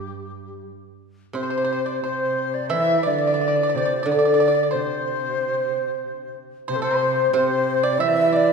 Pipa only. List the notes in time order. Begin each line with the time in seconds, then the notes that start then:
1.35 C5
1.43 C5
1.50 C5
1.58 C5
1.64 C5
1.73 C5
1.86 D5
2.04 C5
2.70 E5
3.03 D5
3.11 D5
3.19 D5
3.27 D5
3.34 D5
3.41 D5
3.48 D5
3.56 D5
3.63 D5
3.70 D5
3.77 D5
3.85 D5
4.03 D5
4.12 D5
4.19 D5
4.25 D5
4.34 D5
4.40 D5
4.48 D5
4.54 D5
4.63 D5
4.71 C5
6.68 C5
6.82 C5
7.34 C5
7.83 D5
8.00 E5
8.24 E5
8.33 D5